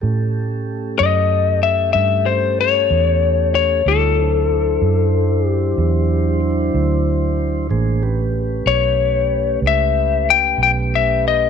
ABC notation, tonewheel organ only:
X:1
M:12/8
L:1/8
Q:3/8=63
K:Amix
V:1 name="Tonewheel organ"
[A,CGA]12 | [G,^D=Fc] [^F,=DE=c]8- [F,DEc]3 | [_B,D^G=c] [A,^C=G=B]8- [A,CGB]3 |]